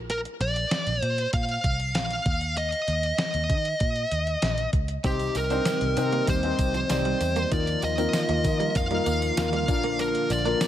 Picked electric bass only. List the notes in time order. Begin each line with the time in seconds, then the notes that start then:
Already playing: A#1
0.40 A#1
0.87 A#1
1.02 A#2
1.33 A#2
1.64 C2
1.95 A#1
2.26 D#2
2.88 D#2
3.34 D#2
3.50 D#3
3.81 A#2
4.12 D#2
4.42 A#1
4.73 C#2
5.04 C2
5.35 C2
5.82 C2
5.97 C3
6.28 D#2
6.59 C2
6.90 C2
7.21 E2
7.52 D#2
7.83 D#2
8.29 D#2
8.45 D#3
8.76 F2
9.07 D#2
9.37 D#2
9.68 A#1
10.30 A#1